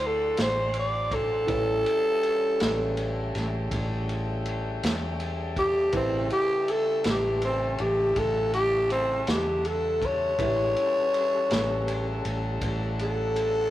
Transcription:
0.00 0.33 D2 loud
0.00 1.45 F#3 medium
0.00 1.45 D4 medium
0.00 1.45 E4 medium
0.00 1.45 F#4 medium
0.00 1.44 A4 medium
0.00 1.45 C5 medium
0.00 1.46 D5 medium
0.00 1.46 F#5 medium
0.00 1.46 C6 medium
0.00 ride medium
0.06 0.39 A4 medium
0.37 1.46 A1 medium
0.37 snare loud
0.37 ride medium
0.42 0.76 C5 medium
0.74 ride medium
0.79 1.15 D5 medium
1.11 3.31 A4 loud
1.11 kick medium
1.11 ride medium
1.46 1.83 A1 medium
1.46 5.90 G3 medium
1.46 5.90 C#4 medium
1.46 5.89 E4 medium
1.46 5.89 G4 soft
1.46 5.90 A4 medium
1.46 5.89 B4 medium
1.46 5.90 C#5 medium
1.46 13.70 E5 medium
1.46 8.12 G5 medium
1.46 13.70 A5 medium
1.46 kick loud
1.46 ride medium
1.86 ride medium
2.23 ride medium
2.60 3.31 A1 loud
2.60 snare loud
2.60 ride medium
2.97 ride medium
3.35 3.69 A1 loud
3.35 snare soft
3.35 ride medium
3.71 4.79 A1 loud
3.71 kick medium
3.71 ride medium
4.09 ride medium
4.46 ride medium
4.83 5.90 E2 medium
4.83 snare loud
4.83 ride medium
5.20 ride medium
5.56 5.94 G4 medium
5.56 kick medium
5.56 ride medium
5.92 6.28 A1 medium
5.92 10.34 C#3 medium
5.92 10.35 G3 medium
5.92 6.31 C4 medium
5.92 10.34 E4 medium
5.92 10.34 G4 medium
5.92 10.34 A4 medium
5.92 10.34 B4 medium
5.92 10.34 E5 medium
5.92 kick loud
5.92 ride medium
6.30 6.72 G4 loud
6.30 ride medium
6.68 7.05 A4 medium
6.68 ride medium
7.04 7.76 A1 loud
7.04 snare loud
7.04 ride medium
7.10 7.44 G4 medium
7.42 7.82 C4 medium
7.42 ride medium
7.78 8.14 A1 medium
7.78 8.20 G4 medium
7.78 ride medium
8.16 9.24 A1 loud
8.16 8.53 A4 medium
8.16 13.70 F#5 medium
8.16 kick medium
8.16 ride medium
8.53 8.90 G4 loud
8.53 ride medium
8.90 9.31 C4 medium
8.90 ride medium
9.27 10.35 E2 medium
9.27 9.67 G4 medium
9.27 snare loud
9.27 ride medium
9.65 10.07 A4 medium
9.65 ride medium
10.02 12.22 C#5 loud
10.02 kick medium
10.02 ride medium
10.38 10.73 A1 medium
10.38 10.76 G#3 medium
10.38 10.76 D4 medium
10.38 13.70 E4 medium
10.38 10.76 G4 medium
10.38 13.70 G4 medium
10.38 13.70 B4 medium
10.38 13.70 E5 medium
10.38 kick loud
10.38 ride medium
10.73 13.70 G3 medium
10.73 13.70 C#4 medium
10.73 13.70 A4 medium
10.73 ride medium
11.14 ride medium
11.51 12.21 A1 loud
11.51 snare loud
11.51 ride medium
11.88 ride medium
12.25 12.59 A1 medium
12.25 ride medium
12.61 13.69 A1 loud
12.61 kick medium
12.61 ride medium
12.99 13.70 A4 loud
12.99 ride medium
13.36 ride medium

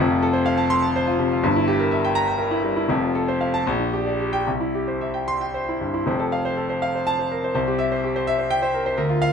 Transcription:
0.00 1.39 F1 loud
0.00 1.40 F2 loud
0.10 0.29 F4 medium
0.22 0.42 A4 loud
0.33 0.53 C5 loud
0.46 0.66 F5 loud
0.57 0.77 A5 loud
0.70 0.90 C6 loud
0.82 1.02 A5 loud
0.96 1.15 C5 loud
1.07 1.26 F4 loud
1.19 1.38 C3 loud
1.32 1.44 F4 loud
1.43 2.85 G1 loud
1.43 2.85 G2 loud
1.56 1.75 E4 medium
1.68 1.87 G4 loud
1.80 1.99 A#4 medium
1.91 2.11 E5 medium
2.04 2.23 G5 loud
2.15 2.35 A#5 loud
2.28 2.47 G5 medium
2.38 2.59 A#4 medium
2.51 2.71 E4 medium
2.64 2.84 G3 medium
2.76 2.89 E4 medium
2.89 3.64 F1 loud
2.89 3.65 F2 loud
3.01 3.22 F4 medium
3.15 3.35 A4 medium
3.28 3.49 C5 loud
3.41 3.62 F5 medium
3.54 3.67 A5 loud
3.67 4.45 A#1 loud
3.80 4.01 D4 medium
3.93 4.14 G4 medium
4.06 4.28 D5 medium
4.20 4.42 G4 medium
4.33 4.47 G5 loud
4.47 6.03 C2 medium
4.60 4.82 E4 medium
4.75 4.96 G4 medium
4.88 5.09 C5 medium
5.01 5.22 E5 medium
5.14 5.35 G5 medium
5.28 5.49 C6 loud
5.41 5.62 G5 medium
5.54 5.76 C5 medium
5.69 5.90 E4 medium
5.81 6.02 G2 medium
5.94 6.07 E4 medium
6.06 7.50 F1 medium
6.06 7.51 F2 loud
6.06 6.27 C5 medium
6.19 6.39 A4 medium
6.32 6.52 F5 loud
6.45 6.65 C5 medium
6.57 6.77 A4 medium
6.69 6.89 C5 medium
6.82 7.02 F5 loud
6.95 7.14 C5 medium
7.07 7.26 A5 loud
7.19 7.38 C5 medium
7.32 7.43 A#4 medium
7.44 7.53 C5 medium
7.55 8.93 C2 loud
7.55 7.74 C5 medium
7.67 7.86 G4 medium
7.79 7.98 E5 loud
7.92 8.10 C5 medium
8.04 8.22 G4 medium
8.16 8.34 C5 loud
8.27 8.46 E5 loud
8.39 8.57 C5 medium
8.50 8.69 G5 loud
8.62 8.81 C5 loud
8.74 8.86 A#4 medium
8.86 8.98 C5 loud
8.97 9.33 D2 loud
8.97 9.16 A#4 loud
9.09 9.28 F4 medium
9.22 9.33 F5 loud

